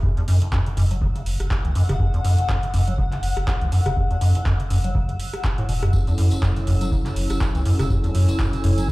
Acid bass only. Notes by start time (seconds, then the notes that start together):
0.03 F#2
0.17 E2
0.28 F#2
0.42 F#1
0.52 F#2
0.66 C#3
0.77 F#2
0.91 F#3
1.02 C#3
1.16 C#3
1.65 E3
1.75 F#2
1.89 C#3
2.00 F#2
2.14 E2
2.25 F#2
2.38 F#1
2.49 F#2
2.63 C#3
2.74 F#2
2.88 F#3
2.98 C#3
3.12 C#3
3.61 E3
3.72 F#2
3.86 C#3
3.97 F#2
4.11 E2
4.21 F#2
4.35 F#1
4.46 F#2
4.60 C#3
4.70 F#2
4.84 F#3
4.95 C#3
5.09 C#3
5.58 A2
5.69 B2
5.83 F#2
5.93 F#2
6.07 E2
6.18 F#2
6.32 F#1
6.43 F#2
6.56 C#3
6.67 F#2
6.81 F#3
6.92 C#3
7.06 C#3
7.55 E3
7.66 F#2
7.79 C#3
7.90 F#2
8.04 E2
8.15 F#2
8.29 F#1
8.39 F#2
8.53 C#3
8.64 F#2
8.78 F#3
8.89 C#3